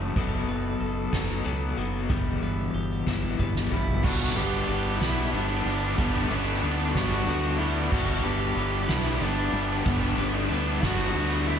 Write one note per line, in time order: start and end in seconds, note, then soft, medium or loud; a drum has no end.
0.00 0.11 F#1 loud
0.00 0.14 F#2 medium
0.00 0.14 C#3 medium
0.00 0.16 E3 medium
0.00 0.15 F#3 medium
0.00 0.16 A3 medium
0.00 0.16 E4 medium
0.00 0.14 F#4 medium
0.00 0.16 A4 medium
0.00 0.14 E5 medium
0.00 0.14 A5 medium
0.16 0.43 F#1 loud
0.16 1.12 B2 medium
0.16 1.12 F#3 medium
0.16 1.13 B3 loud
0.16 2.09 A4 medium
0.16 2.08 D#5 medium
0.16 4.00 B5 medium
0.16 kick loud
0.16 crash medium
0.48 0.75 F#1 medium
0.48 1.46 B3 medium
0.80 1.08 F#1 medium
0.80 2.10 A4 medium
1.13 1.40 F#1 loud
1.13 1.43 B2 loud
1.13 1.44 F#3 medium
1.13 1.45 B3 loud
1.13 2.10 D#4 medium
1.13 kick medium
1.13 snare loud
1.45 1.73 C#2 loud
1.45 1.76 B2 medium
1.45 1.76 F#3 medium
1.45 1.78 B3 medium
1.77 2.10 F#1 medium
1.77 2.08 B2 medium
1.77 2.08 F#3 medium
1.77 4.06 B3 medium
2.08 2.37 G1 medium
2.08 3.05 E2 medium
2.08 3.06 B2 loud
2.08 3.06 E3 loud
2.08 3.71 G3 medium
2.08 4.02 G4 medium
2.08 4.01 E5 medium
2.08 kick loud
2.42 2.69 G1 medium
2.42 3.38 B3 medium
2.74 3.02 G1 medium
2.74 4.04 G4 medium
3.06 3.34 G1 loud
3.06 3.37 E2 medium
3.06 3.38 B2 loud
3.06 3.38 E3 loud
3.06 4.04 E4 medium
3.06 kick medium
3.06 snare medium
3.23 high tom medium
3.38 3.66 G1 loud
3.38 3.70 E2 medium
3.38 3.71 B2 loud
3.38 3.71 E3 medium
3.38 4.04 B3 medium
3.38 kick medium
3.56 snare medium
3.71 4.04 G1 loud
3.71 4.02 E2 medium
3.71 4.02 B2 medium
3.71 4.03 E3 medium
3.71 4.03 G3 medium
3.71 4.06 E4 loud
3.71 floor tom medium
3.88 floor tom loud
4.03 4.34 G1 medium
4.03 5.97 G2 medium
4.03 4.67 D3 loud
4.03 4.39 G3 loud
4.03 4.38 B3 medium
4.03 4.36 D4 loud
4.03 4.38 F#4 loud
4.03 7.88 F#5 medium
4.03 11.59 B5 medium
4.03 kick loud
4.03 crash loud
4.36 4.66 G1 loud
4.36 4.69 G3 medium
4.36 4.70 B3 medium
4.36 4.71 D4 medium
4.36 5.00 G4 loud
4.36 ride medium
4.68 4.98 G1 medium
4.68 5.32 D3 medium
4.68 5.03 G3 medium
4.68 5.01 B3 medium
4.68 5.00 D4 medium
4.68 ride medium
5.00 5.30 B1 medium
5.00 5.33 G3 medium
5.00 5.34 B3 medium
5.00 5.35 D4 medium
5.00 5.34 E4 loud
5.00 7.63 F#4 medium
5.00 snare loud
5.00 ride loud
5.33 5.63 G1 loud
5.33 5.98 D3 medium
5.33 5.68 G3 medium
5.33 5.67 B3 medium
5.33 5.99 D4 loud
5.33 5.65 D4 medium
5.33 ride medium
5.65 5.95 G1 medium
5.65 5.99 G3 medium
5.65 5.99 B3 medium
5.65 6.00 D4 medium
5.65 ride medium
5.97 6.28 G1 loud
5.97 7.91 G2 medium
5.97 6.61 D3 medium
5.97 6.32 G3 medium
5.97 6.31 B3 loud
5.97 6.30 B3 loud
5.97 6.29 D4 loud
5.97 kick loud
5.97 ride loud
6.29 6.60 G1 loud
6.29 6.62 G3 medium
6.29 6.64 B3 medium
6.29 6.64 C#4 medium
6.29 6.65 D4 medium
6.29 ride medium
6.62 6.92 D2 medium
6.62 7.25 D3 medium
6.62 6.98 G3 medium
6.62 6.96 B3 medium
6.62 6.94 D4 loud
6.62 6.95 D4 medium
6.62 ride medium
6.94 7.25 G1 loud
6.94 7.27 G3 medium
6.94 7.28 B3 medium
6.94 7.29 D4 medium
6.94 7.60 F#4 loud
6.94 kick medium
6.94 snare loud
6.94 ride loud
7.26 7.88 D2 loud
7.26 7.91 D3 medium
7.26 7.62 G3 medium
7.26 7.61 B3 medium
7.26 7.59 D4 loud
7.26 ride medium
7.59 7.92 G3 medium
7.59 7.93 B3 medium
7.59 7.93 D4 medium
7.59 7.93 E4 loud
7.59 ride medium
7.91 8.21 G1 loud
7.91 9.85 G2 medium
7.91 8.55 D3 medium
7.91 8.26 G3 loud
7.91 8.25 B3 loud
7.91 8.23 D4 loud
7.91 8.26 F#4 loud
7.91 11.59 E5 medium
7.91 kick loud
7.91 crash loud
8.23 8.54 G1 loud
8.23 8.57 G3 medium
8.23 8.58 B3 medium
8.23 8.59 D4 medium
8.23 8.90 G4 loud
8.23 ride medium
8.56 8.86 G1 medium
8.56 9.19 D3 medium
8.56 8.91 G3 medium
8.56 8.89 B3 medium
8.56 8.87 D4 medium
8.56 ride medium
8.88 9.19 B1 loud
8.88 9.21 G3 medium
8.88 9.21 B3 medium
8.88 9.22 D4 medium
8.88 9.23 E4 loud
8.88 10.50 F#4 medium
8.88 snare loud
8.88 ride loud
9.20 9.50 G1 loud
9.20 9.85 D3 medium
9.20 9.55 G3 medium
9.20 9.53 B3 medium
9.20 9.85 D4 loud
9.20 9.52 D4 medium
9.20 ride medium
9.53 9.83 G1 loud
9.53 9.86 G3 medium
9.53 9.86 B3 medium
9.53 9.87 D4 medium
9.53 ride medium
9.85 10.15 G1 medium
9.85 10.50 G2 medium
9.85 10.49 D3 loud
9.85 10.20 G3 loud
9.85 10.19 B3 medium
9.85 10.18 B3 loud
9.85 10.16 D4 loud
9.85 kick loud
9.85 ride loud
10.17 10.47 G1 medium
10.17 10.51 G3 medium
10.17 10.51 B3 medium
10.17 10.52 C#4 medium
10.17 10.51 D4 medium
10.17 ride loud
10.50 10.80 D2 medium
10.50 11.13 D3 medium
10.50 10.84 G3 medium
10.50 10.82 B3 medium
10.50 10.84 D4 loud
10.50 10.80 D4 medium
10.50 ride medium
10.82 11.12 G1 medium
10.82 11.15 G3 medium
10.82 11.15 B3 medium
10.82 11.16 D4 medium
10.82 11.50 F#4 loud
10.82 11.59 F#4 medium
10.82 kick medium
10.82 snare loud
10.82 ride loud
11.14 11.59 D2 loud
11.14 11.59 D3 medium
11.14 11.48 G3 medium
11.14 11.47 B3 medium
11.14 11.45 D4 medium
11.14 ride medium
11.46 11.59 G3 medium
11.46 11.59 B3 medium
11.46 11.59 D4 medium
11.46 11.59 E4 loud
11.46 ride medium